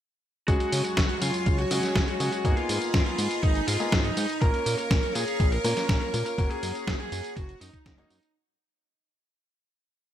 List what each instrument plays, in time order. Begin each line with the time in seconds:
0.48 analog synth bass C#2, string machine F#3 C#5 G#5 C#6, grand piano F#3 G#3 C#4 G#4, lead electric guitar F#4, kick, closed hi-hat, tambourine
0.60 closed hi-hat
0.72 analog synth bass C#3, open hi-hat, tambourine
0.85 lead electric guitar F#4, tambourine
0.97 analog synth bass C#2, kick, snare, closed hi-hat, tambourine
1.09 closed hi-hat
1.22 analog synth bass C#3, lead electric guitar F4, open hi-hat, tambourine
1.34 closed hi-hat, tambourine
1.46 analog synth bass C#2, kick, closed hi-hat, tambourine
1.59 lead electric guitar F#4, closed hi-hat
1.71 analog synth bass C#3, grand piano G#3 C#4 F#4 G#4, open hi-hat, tambourine
1.83 snare, closed hi-hat, tambourine
1.96 analog synth bass C#2, kick, snare, closed hi-hat, tambourine
2.08 lead electric guitar F#4, closed hi-hat
2.20 analog synth bass C#3, grand piano G#3 C#4 F#4 G#4, open hi-hat, tambourine
2.32 lead electric guitar F#4, closed hi-hat, tambourine
2.45 analog synth bass G#1, grand piano A#3 B3 D#4 G#4, string machine D#5 G#5 A#5 B5, kick, closed hi-hat, tambourine
2.57 lead electric guitar F4, closed hi-hat
2.69 analog synth bass G#2, open hi-hat, tambourine
2.82 closed hi-hat, tambourine
2.94 analog synth bass G#1, kick, snare, closed hi-hat, tambourine
3.06 lead electric guitar F4, closed hi-hat
3.18 analog synth bass G#2, open hi-hat, tambourine
3.31 closed hi-hat, tambourine
3.43 analog synth bass G#1, lead electric guitar D#4, kick, closed hi-hat, tambourine
3.55 closed hi-hat
3.68 analog synth bass G#2, lead electric guitar F4, open hi-hat, tambourine
3.80 grand piano A#3 B3 D#4 G#4, closed hi-hat, tambourine
3.92 analog synth bass G#1, kick, snare, closed hi-hat, tambourine
4.04 lead electric guitar D#4, closed hi-hat
4.17 analog synth bass G#2, open hi-hat, tambourine
4.29 closed hi-hat, tambourine
4.41 analog synth bass A#1, grand piano A#3 C#4 F4 A#4, lead electric guitar A#4, string machine C#5 F5 C#6, kick, closed hi-hat, tambourine
4.54 closed hi-hat
4.66 analog synth bass A#2, open hi-hat, tambourine
4.78 lead electric guitar A#4, closed hi-hat, tambourine
4.91 analog synth bass A#1, kick, snare, closed hi-hat, tambourine
5.03 closed hi-hat
5.15 analog synth bass A#2, lead electric guitar G#4, open hi-hat, tambourine
5.28 closed hi-hat, tambourine
5.40 analog synth bass A#1, kick, closed hi-hat, tambourine
5.52 lead electric guitar A#4, closed hi-hat
5.64 analog synth bass A#2, grand piano A#3 C#4 F4 A#4, open hi-hat, tambourine
5.77 snare, closed hi-hat, tambourine
5.89 analog synth bass A#1, kick, snare, closed hi-hat, tambourine
6.01 lead electric guitar A#4, closed hi-hat
6.14 analog synth bass A#2, grand piano A#3 C#4 F4 A#4, open hi-hat, tambourine
6.26 lead electric guitar A#4, closed hi-hat, tambourine
6.38 analog synth bass F#1, grand piano A#3 C#4 F#4 A#4, string machine F#5, kick, closed hi-hat, tambourine
6.51 lead electric guitar G#4, closed hi-hat
6.63 analog synth bass F#2, open hi-hat, tambourine
6.75 closed hi-hat, tambourine
6.87 analog synth bass F#1, kick, snare, closed hi-hat, tambourine
7.00 lead electric guitar G#4, closed hi-hat
7.12 analog synth bass F#2, open hi-hat, tambourine
7.24 closed hi-hat, tambourine
7.37 analog synth bass F#1, lead electric guitar F#4, kick, closed hi-hat, tambourine
7.49 closed hi-hat
7.61 analog synth bass F#2, lead electric guitar D#4, open hi-hat, tambourine
7.73 kick, closed hi-hat
7.86 analog synth bass F#1, kick, snare, closed hi-hat, tambourine
7.98 grand piano A#3 C#4 F#4 D#5, lead electric guitar D#4, closed hi-hat
8.10 analog synth bass F#2, open hi-hat, tambourine
8.23 closed hi-hat, tambourine